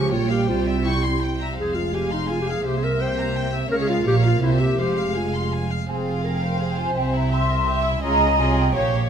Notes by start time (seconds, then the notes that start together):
Already playing: C#2 C#3 F3 G4 G#5 C#6
0.12 A#1 A#2 G3 F4 C#5 G5
0.30 G4 F5
0.48 C2 C3 F4 C5
0.67 E5
0.85 E4 G5 C#6
1.04 C6
1.22 G5
1.40 E5 A#5
1.57 F1 F2 G#3 G#4 C5 F5
1.75 F4 F5
1.94 G4 G#5
2.11 D#4 C6
2.30 F4 G#5
2.41 G4
2.48 G#4 F5
2.65 C2 C3 A#3 G4 C5 E5
2.77 G#4
2.83 A#4 E5
3.01 C5 G5
3.19 A#5
3.36 G5
3.54 E5
3.71 C#2 C#3 G#3 A#4 C#5 F5
3.81 G#4
3.89 F4 F5
4.06 A#1 A#2 A#3 G4 C#5
4.25 F4 F5
4.42 C2 C3 E4 C5 E5
4.52 F4
4.60 G4 E5
4.79 F1 F2 G#3 G4 C5 F5
4.98 F5
5.16 F4 G#5
5.35 C6
5.53 G#5
5.71 F5
5.89 F1 F2 C4 G#4 F5 G#5
6.08 F4 F5
6.25 G#4 A#4 G5
6.43 C5
6.60 G#4 C5 F5
6.70 G5
6.78 F4 G#5
6.96 C2 C3 C4 E5 G5
7.06 G#5
7.14 E4 A#5
7.32 G4 E5 C6
7.50 A#4
7.67 G4 E5
7.85 E4
8.02 C#2 C#3 F4 G#4 C#5 D#5 A#5
8.38 C2 C3 F4 G#4 C#5 G#5
8.56 G5
8.73 A#1 A#2 G4 C#5 F5